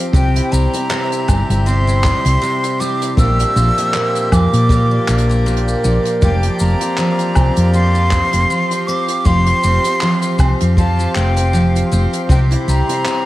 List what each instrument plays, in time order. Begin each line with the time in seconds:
Already playing: accordion F3 C4 G4 F5, twelve-string acoustic guitar F3 C4 F4 G4
0.13 fingered electric bass C2, twelve-string acoustic guitar C3 G4, accordion C3, flute G5, kick, shaker
0.36 twelve-string acoustic guitar E4, closed hi-hat
0.52 fingered electric bass C2, twelve-string acoustic guitar G3, flute A#5, shaker
0.73 twelve-string acoustic guitar C4, closed hi-hat, shaker
0.90 twelve-string acoustic guitar C3, accordion E5, clap, shaker
1.12 closed hi-hat, shaker
1.28 fingered electric bass G1, twelve-string acoustic guitar G3, kick, low woodblock, shaker
1.49 fingered electric bass G1, closed hi-hat, shaker
1.66 twelve-string acoustic guitar C3 G4, flute C6, shaker
1.87 twelve-string acoustic guitar E4, shaker
2.04 twelve-string acoustic guitar G3, kick, clap, shaker
2.25 fingered electric bass C2, twelve-string acoustic guitar C4, closed hi-hat, shaker
2.41 twelve-string acoustic guitar C3, shaker
2.63 closed hi-hat, shaker
2.80 twelve-string acoustic guitar G3, flute D6, shaker
3.02 closed hi-hat, shaker
3.17 fingered electric bass A#1, twelve-string acoustic guitar A#2 G4, accordion A#2, flute E6, kick, shaker
3.39 twelve-string acoustic guitar D4, closed hi-hat, shaker
3.56 fingered electric bass A#1, twelve-string acoustic guitar F3, shaker
3.78 twelve-string acoustic guitar A#3, accordion A#3, closed hi-hat, shaker
3.94 twelve-string acoustic guitar A#2, clap, shaker
4.15 closed hi-hat, shaker
4.32 fingered electric bass F2, twelve-string acoustic guitar F3, flute D6, kick, low woodblock, shaker
4.53 fingered electric bass A#2, closed hi-hat, shaker
4.57 accordion D5
4.69 twelve-string acoustic guitar A#2 G4, kick, shaker
4.91 twelve-string acoustic guitar D4
5.08 fingered electric bass A#1, twelve-string acoustic guitar F3, clap, shaker
5.18 closed hi-hat
5.29 twelve-string acoustic guitar A#3, shaker
5.46 twelve-string acoustic guitar A#2, shaker
5.56 closed hi-hat
5.68 shaker
5.84 fingered electric bass A#1, twelve-string acoustic guitar F3, shaker
6.05 closed hi-hat, shaker
6.22 fingered electric bass F1, twelve-string acoustic guitar F3 G4, accordion F3, flute G5, synth texture C6, kick, shaker
6.43 twelve-string acoustic guitar F4, closed hi-hat
6.59 fingered electric bass F1, twelve-string acoustic guitar C4, flute A#5, shaker
6.77 accordion C4, twelve-string acoustic guitar C4, closed hi-hat
6.82 shaker
6.98 twelve-string acoustic guitar F3, clap, shaker
7.10 accordion F5
7.19 closed hi-hat, shaker
7.35 fingered electric bass C2, twelve-string acoustic guitar C4, kick, low woodblock, shaker
7.56 fingered electric bass F2, closed hi-hat, shaker
7.74 twelve-string acoustic guitar F3 G4, flute C6, shaker
7.95 twelve-string acoustic guitar F4, shaker
8.11 twelve-string acoustic guitar C4, kick, clap, shaker
8.33 fingered electric bass F1, twelve-string acoustic guitar C4, closed hi-hat, shaker
8.50 twelve-string acoustic guitar F3, shaker
8.71 closed hi-hat, shaker
8.87 twelve-string acoustic guitar C4, flute D6, shaker
9.08 closed hi-hat, shaker
9.25 fingered electric bass F1, twelve-string acoustic guitar F3 G4, flute C6, kick, shaker
9.46 twelve-string acoustic guitar F4, closed hi-hat
9.63 fingered electric bass F1, twelve-string acoustic guitar C4, shaker
9.84 twelve-string acoustic guitar C4, closed hi-hat, shaker
10.01 twelve-string acoustic guitar F3, clap, shaker
10.22 closed hi-hat, shaker
10.39 fingered electric bass C2, twelve-string acoustic guitar C4, kick, low woodblock, shaker
10.60 fingered electric bass F2, closed hi-hat, shaker
10.77 twelve-string acoustic guitar F3 G4, flute A5, kick, shaker
10.99 twelve-string acoustic guitar F4, shaker
11.15 fingered electric bass F1, twelve-string acoustic guitar C4, flute G5, clap, shaker
11.37 twelve-string acoustic guitar C4, closed hi-hat, shaker
11.53 twelve-string acoustic guitar F3, shaker
11.76 closed hi-hat, shaker
11.92 fingered electric bass F1, twelve-string acoustic guitar C4, shaker
12.13 closed hi-hat, shaker
12.29 fingered electric bass C2, accordion C3, twelve-string acoustic guitar C3 G4, flute G5, kick, shaker
12.51 twelve-string acoustic guitar E4, closed hi-hat
12.68 fingered electric bass C2, twelve-string acoustic guitar G3, flute A#5, shaker
12.89 twelve-string acoustic guitar C4, closed hi-hat, shaker
13.05 twelve-string acoustic guitar C3, clap, shaker